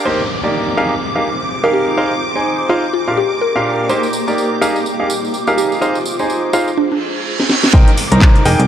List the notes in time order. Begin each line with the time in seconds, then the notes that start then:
0.05 A#3 C4 D#4 G4 C5 D6, crash, downlifter
0.44 A#3 D#4 G4 D5
0.77 D#4 F4 G4 G#4 A#4 F5
0.89 G5
0.99 C5
1.16 D#4 G4 G#4 A#4 F5
1.64 D#4 G4 G#4 A#4 F5
1.73 G4
1.97 D#4 G#4 C5 F5
2.05 A#5
2.36 D#4 G#4 C5 G#5
2.69 D#4 F4 G#4 C5 F5
2.93 A#3 F4 G4
3.08 A#2 D4 F4 G4 A#4 F5
3.17 G4
3.41 A#4
3.56 A#2 D4 G4 A#4 F5
3.89 A#3 C4 D#4 G4 C5, tambourine
4.03 tambourine
4.13 tambourine
4.28 A#3 D#4 G4 D5, tambourine
4.38 tambourine
4.61 D#4 F4 G4 G#4 A#4 F5, tambourine
4.76 tambourine
4.85 C5, tambourine
5.00 D#4 G4 G#4 A#4 F5
5.10 tambourine
5.25 tambourine
5.34 tambourine
5.47 D#4 G4 G#4 A#4 F5, tambourine
5.57 G4, tambourine
5.72 tambourine
5.81 D#4 G#4 C5 F5, tambourine
5.95 tambourine
6.05 tambourine
6.19 D#4 G#4 C5 G#5, tambourine
6.30 tambourine
6.53 D#4 F4 G#4 C5 F5, tambourine
6.68 tambourine
6.77 D4, reverse cymbal
6.92 D4
7.40 snare
7.49 snare
7.64 snare
7.73 C2 C4 D#4 A#4 C5 G5 D6, kick, closed hi-hat, downlifter
7.88 closed hi-hat
7.97 closed hi-hat, open hi-hat
8.12 C2 D#4 A#4 C5 A#5, closed hi-hat
8.21 kick, snare, clap, closed hi-hat
8.36 closed hi-hat
8.45 F1 D#4 F4 G#4 A#4 G5, closed hi-hat, open hi-hat
8.52 C5
8.60 C2, closed hi-hat